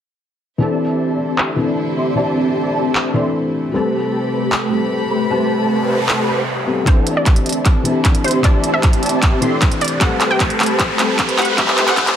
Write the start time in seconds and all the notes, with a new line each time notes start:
0.58 D3 E3 A3 C4 D4 E4 G4 A4 C5 D5 E5 A5
1.38 clap
1.56 E3 C4 D4
1.60 A4
1.97 C4 G4 D5 E5 C6
2.15 E3 C4 D4 G4 D5 E5 A5
2.95 clap
3.14 E3 C4 D4 G4 A4 D5 E5 C6
3.72 C3 G3 A3 C4 G4 A4 B4 C5 A5 B5
4.52 clap
4.70 G3 C4
4.74 A4
5.11 A3 G4 B4 C5 B5
5.28 G3 A3 C4 G4 B4 C5 A5, noise sweep
5.32 G4
6.09 clap
6.28 A3 G4 B4 C5 B5
6.66 G3 B3 C4 A4
6.85 D3 E3 A3 C4 E4 G4 A4 C5 D5 E5 A5, kick, clap, closed hi-hat, riser
7.07 closed hi-hat
7.17 D5
7.26 kick, clap, closed hi-hat
7.36 closed hi-hat
7.46 closed hi-hat
7.49 closed hi-hat
7.53 closed hi-hat
7.65 kick, clap, closed hi-hat
7.83 E3 C4 D4 A4, closed hi-hat
8.05 kick, clap, closed hi-hat
8.15 closed hi-hat
8.24 C4 G4 C5 D5 E5 C6, closed hi-hat
8.28 closed hi-hat
8.31 closed hi-hat
8.42 E3 C4 G4 D5 E5 A5, kick, clap, closed hi-hat
8.64 closed hi-hat
8.74 E5
8.83 kick, clap, closed hi-hat
8.93 closed hi-hat
9.03 closed hi-hat
9.06 closed hi-hat
9.09 closed hi-hat
9.22 kick, clap, closed hi-hat
9.41 E3 C4 D4 G4 A4 D5 E5 C6, closed hi-hat
9.62 kick, clap, closed hi-hat
9.72 closed hi-hat
9.81 D5, closed hi-hat
9.85 closed hi-hat
9.88 closed hi-hat
9.99 C3 G3 A3 C4 G4 B4 C5 F#5 A5 B5, kick, clap, closed hi-hat
10.03 A4
10.21 clap, closed hi-hat
10.31 G5
10.40 kick, clap, closed hi-hat
10.50 closed hi-hat
10.60 clap, closed hi-hat
10.63 closed hi-hat
10.66 closed hi-hat
10.79 kick, clap, closed hi-hat
10.97 G3 C4, clap, closed hi-hat
11.01 A4
11.19 kick, clap, closed hi-hat
11.29 closed hi-hat
11.38 A3 G4 B4 C5 F#5 B5, clap, closed hi-hat
11.42 closed hi-hat
11.45 closed hi-hat
11.56 G3 A3 C4 G4 B4 C5 E5 A5, kick, clap, closed hi-hat
11.60 G4
11.68 clap
11.78 clap, closed hi-hat
11.87 F#5, clap
11.97 kick, clap, closed hi-hat
12.07 clap, closed hi-hat